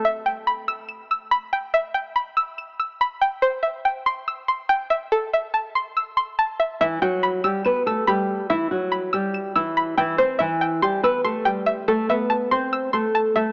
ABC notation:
X:1
M:4/4
L:1/8
Q:1/4=142
K:Em
V:1 name="Synth pluck"
e g b e' e'' e' b g | e g b e' e'' e' b g | c e g c' e' c' g e | A e a c' e' c' a e |
e g b e' e'' e' b2 | e2 b e' e'' e' b g | c e g c' e' c' g e | A e a c' e' c' a e |]
V:2 name="Nylon-string guitar"
z8 | z8 | z8 | z8 |
[E,E] [F,F]2 [G,G] [B,B] [A,A] [G,G]2 | [E,E] [F,F]2 [G,G]2 [E,E]2 [E,E] | [Cc] [E,E]2 [G,G] [B,B] [A,A] [G,G]2 | [A,A] [B,B]2 [Cc]2 [A,A]2 [A,A] |]